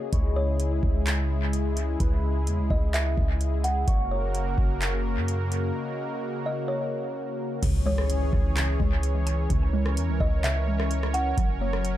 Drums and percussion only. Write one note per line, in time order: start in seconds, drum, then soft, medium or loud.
0.13 kick loud
0.13 closed hi-hat medium
0.60 closed hi-hat medium
0.83 kick medium
1.07 clap loud
1.07 closed hi-hat medium
1.53 closed hi-hat medium
1.77 closed hi-hat medium
2.00 kick loud
2.00 closed hi-hat medium
2.47 closed hi-hat medium
2.70 kick loud
2.94 clap loud
2.94 closed hi-hat medium
3.18 kick loud
3.41 closed hi-hat medium
3.64 closed hi-hat medium
3.88 kick loud
3.88 closed hi-hat medium
4.35 closed hi-hat medium
4.58 kick medium
4.82 clap loud
4.82 closed hi-hat medium
5.28 closed hi-hat medium
5.52 closed hi-hat medium
7.63 kick loud
7.63 closed hi-hat medium
7.63 crash loud
7.98 cross-stick medium
8.10 closed hi-hat medium
8.33 kick loud
8.57 clap loud
8.57 closed hi-hat medium
8.80 kick loud
9.03 closed hi-hat medium
9.27 closed hi-hat medium
9.50 kick loud
9.50 closed hi-hat medium
9.86 cross-stick medium
9.97 closed hi-hat medium
10.20 kick loud
10.44 clap loud
10.44 closed hi-hat medium
10.80 cross-stick medium
10.91 closed hi-hat medium
11.03 cross-stick medium
11.14 closed hi-hat medium
11.38 kick loud
11.38 closed hi-hat medium
11.73 cross-stick medium
11.85 closed hi-hat medium